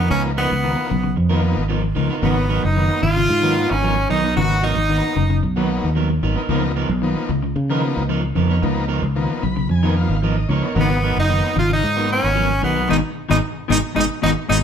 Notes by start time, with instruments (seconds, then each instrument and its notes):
Already playing: clean electric guitar A#4
0.00 clean electric guitar B3 D#4
0.10 fingered electric bass C#2, clean electric guitar C#3, transistor combo organ F3 A#3 B3 D#4, trumpet C#4, tenor saxophone C#4
0.25 muted clean electric guitar stroke
0.37 clean electric guitar F3 B3 D#4 A#4, tenor saxophone B3, trumpet B3
0.52 fingered electric bass C#2, muted clean electric guitar stroke
0.63 clean electric guitar D#3, transistor combo organ F3 A#3 B3 D#4
0.77 muted clean electric guitar stroke
0.90 fingered electric bass B1, clean electric guitar C#3, muted clean electric guitar stroke
1.03 clean electric guitar C#3, muted clean electric guitar stroke
1.16 fingered electric bass F2, muted clean electric guitar stroke
1.29 clean electric guitar D#3 F3 B3 D#4 A#4, transistor combo organ F3 A#3 B3 D#4
1.43 muted clean electric guitar stroke
1.57 fingered electric bass G#1
1.68 clean electric guitar F3 B3 D#4 A#4
1.83 muted clean electric guitar stroke
1.95 fingered electric bass C#2, clean electric guitar C#3 F3 B3 D#4 A#4
2.09 transistor combo organ B3 F4, clean electric guitar B3 D#4 A#4
2.22 fingered electric bass G#1, clean electric guitar C#3 F#3 B3 D#4 A#4, transistor combo organ F#3 A#3 B3 D#4, tenor saxophone B3, trumpet B3
2.36 muted clean electric guitar stroke
2.49 clean electric guitar F#3 B3 D#4 A#4
2.64 fingered electric bass F#1, tenor saxophone D#4, trumpet D#4, muted clean electric guitar stroke
2.77 clean electric guitar D#3, transistor combo organ F#3 A#3 B3 D#4
2.90 muted clean electric guitar stroke
3.02 fingered electric bass G#1, clean electric guitar C#3, tenor saxophone F4, trumpet F4, muted clean electric guitar stroke
3.16 clean electric guitar C#3, muted clean electric guitar stroke
3.29 fingered electric bass G#2, muted clean electric guitar stroke
3.42 clean electric guitar D#3 F#3 B3 D#4 A#4, transistor combo organ F#3 A#3 B3 D#4
3.56 muted clean electric guitar stroke
3.70 fingered electric bass G#1, tenor saxophone C#4, trumpet C#4
3.82 clean electric guitar F3 F#3 B3 D#4 A#4
3.97 muted clean electric guitar stroke
4.09 fingered electric bass B1, clean electric guitar D#3 F#3 B3 D#4 A#4, tenor saxophone D#4, trumpet D#4
4.23 transistor combo organ B3 D#4, clean electric guitar B3 D#4 A#4
4.36 fingered electric bass G#1, clean electric guitar C#3, transistor combo organ F#3 A#3 B3 D#4, tenor saxophone F#4, trumpet F#4
4.50 muted clean electric guitar stroke
4.62 clean electric guitar F#3 B3 D#4 A#4, tenor saxophone D#4, trumpet D#4
4.76 fingered electric bass G#1, muted clean electric guitar stroke
4.89 clean electric guitar D#3, transistor combo organ F#3 A#3 B3 D#4
5.03 muted clean electric guitar stroke
5.16 fingered electric bass F#1, clean electric guitar C#3, muted clean electric guitar stroke
5.30 clean electric guitar C#3, muted clean electric guitar stroke
5.43 fingered electric bass B1, muted clean electric guitar stroke
5.56 clean electric guitar D#3 F#3 B3 D#4, transistor combo organ F#3 A#3 B3 D#4, muted clean electric guitar stroke
5.70 muted clean electric guitar stroke
5.84 fingered electric bass D#2
5.95 clean electric guitar F3 F#3 B3 D#4 A#4
6.10 muted clean electric guitar stroke
6.23 fingered electric bass G#1, clean electric guitar D#3 F#3 B3 D#4 A#4
6.36 transistor combo organ B3 D#4, clean electric guitar B3 D#4 A#4
6.49 fingered electric bass C#2, clean electric guitar C#3 F3 B3 D#4 A#4, transistor combo organ F3 A#3 B3 D#4
6.63 muted clean electric guitar stroke
6.76 clean electric guitar F3 B3 D#4 A#4
6.89 fingered electric bass B1, muted clean electric guitar stroke
7.02 clean electric guitar D#3, transistor combo organ F3 A#3 B3 D#4
7.17 muted clean electric guitar stroke
7.29 fingered electric bass C#2, clean electric guitar C#3, muted clean electric guitar stroke
7.42 clean electric guitar C#3, muted clean electric guitar stroke
7.56 fingered electric bass C#3, muted clean electric guitar stroke
7.70 clean electric guitar D#3 F3 B3 D#4 A#4, transistor combo organ F3 A#3 B3 D#4
7.83 muted clean electric guitar stroke
7.97 fingered electric bass C#2
8.09 clean electric guitar F3 B3 D#4 A#4
8.23 muted clean electric guitar stroke
8.35 fingered electric bass F2, clean electric guitar C#3 F3 B3 D#4 A#4
8.49 transistor combo organ B3 C#4, clean electric guitar B3 D#4 A#4
8.62 fingered electric bass C#2, clean electric guitar C#3, transistor combo organ F3 A#3 B3 D#4
8.77 muted clean electric guitar stroke
8.88 clean electric guitar F3 B3 D#4 A#4
9.03 fingered electric bass C#2, muted clean electric guitar stroke
9.15 clean electric guitar D#3, transistor combo organ F3 A#3 B3 D#4
9.30 muted clean electric guitar stroke
9.42 fingered electric bass B1, clean electric guitar C#3, transistor combo organ B5, muted clean electric guitar stroke
9.56 clean electric guitar C#3, muted clean electric guitar stroke
9.69 fingered electric bass F2, transistor combo organ G#5, muted clean electric guitar stroke
9.83 clean electric guitar D#3 F3 B3 D#4 A#4, transistor combo organ F3 A#3 B3 D#4
9.96 transistor combo organ F5, muted clean electric guitar stroke
10.09 fingered electric bass G#1
10.22 clean electric guitar F3 B3 D#4 A#4, transistor combo organ D#5
10.37 muted clean electric guitar stroke
10.49 fingered electric bass C#2, clean electric guitar C#3 F3 B3 D#4 A#4, transistor combo organ C#5
10.62 transistor combo organ B3 D#4, clean electric guitar B3 D#4 A#4
10.75 fingered electric bass G#1, clean electric guitar C#3 F#3 B3 D#4 A#4, transistor combo organ F#3 A#3 B3 D#4
10.80 trumpet B3, tenor saxophone B3
10.91 muted clean electric guitar stroke
11.03 clean electric guitar F#3 B3 D#4 A#4
11.17 fingered electric bass F#1, tenor saxophone D#4, trumpet D#4, muted clean electric guitar stroke
11.29 clean electric guitar D#3, transistor combo organ F#3 A#3 B3 D#4
11.44 muted clean electric guitar stroke
11.56 fingered electric bass G#1, clean electric guitar C#3, trumpet F4, tenor saxophone F4, muted clean electric guitar stroke
11.70 clean electric guitar C#3, tenor saxophone D#4, trumpet D#4, muted clean electric guitar stroke
11.83 fingered electric bass G#2, muted clean electric guitar stroke
11.96 transistor combo organ F#3 A#3 B3 D#4, clean electric guitar F#3 B3 D#4 A#4
12.10 tenor saxophone C#4, trumpet C#4, muted clean electric guitar stroke
12.24 fingered electric bass G#1
12.35 clean electric guitar F3 F#3 B3 A#4, muted clean electric guitar stroke
12.50 muted clean electric guitar stroke
12.62 fingered electric bass B1, clean electric guitar D#3 F#3 B3 D#4 A#4, tenor saxophone B3, trumpet B3
12.76 transistor combo organ B3 F#4, clean electric guitar B3 D#4 A#4
12.89 fingered electric bass G#1, clean electric guitar G#2 B2 D#3 D#4 F#4 G#4, transistor combo organ G#3 B3 D#4, tenor saxophone D#4, trumpet D#4
13.29 fingered electric bass G#1, clean electric guitar G#2 B2 D#3 D#4 F#4 G#4, transistor combo organ G#3 B3 D#4, tenor saxophone D#4, trumpet D#4
13.68 fingered electric bass G#1, clean electric guitar G#2 B2 D#3 D#4 F#4 G#4, transistor combo organ G#3 B3 D#4, tenor saxophone D#4, trumpet D#4
13.95 fingered electric bass G#1, clean electric guitar G#2 B2 D#3 D#4 F#4 G#4, transistor combo organ G#3 B3 D#4, tenor saxophone D#4, trumpet D#4
14.22 fingered electric bass G#1, clean electric guitar G#2 B2 D#3 D#4 F#4 G#4, transistor combo organ G#3 B3 D#4, tenor saxophone D#4, trumpet D#4
14.48 fingered electric bass G#1, clean electric guitar G#2 B2 D#3 D#4 F#4 G#4, transistor combo organ G#3 B3 D#4, tenor saxophone D#4, trumpet D#4